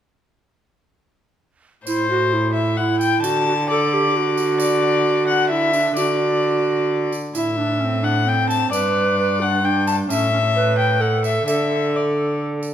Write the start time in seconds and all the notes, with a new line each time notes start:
1.86 A2 E4 C5, tambourine
2.10 F#4
2.33 E4
2.54 E5
2.77 E4 F#5
3.00 G5, tambourine
3.23 D3 F#4 A5, tambourine
3.47 F#4
3.70 A4 D5
3.94 G4
4.16 F#4
4.37 tambourine
4.60 D5, tambourine
5.28 F#5
5.50 E4 E5
5.73 D4, tambourine
5.97 D3 F#4 D5, tambourine
7.12 tambourine
7.34 A2 E4 E5, tambourine
7.57 D4
7.80 C#4
7.85 C4
8.02 D4 F#5
8.26 C4 G5
8.50 A5, tambourine
8.72 G2 B4 D5, tambourine
9.19 B4
9.40 D4 F#5
9.63 D4 G5
9.87 A5, tambourine
10.09 A2 C#4 E5, tambourine
10.32 C#4
10.56 B4
10.78 G5
11.01 A4 F#5
11.24 E5, tambourine
11.47 D3 A4 E5, tambourine
11.96 D5
12.63 tambourine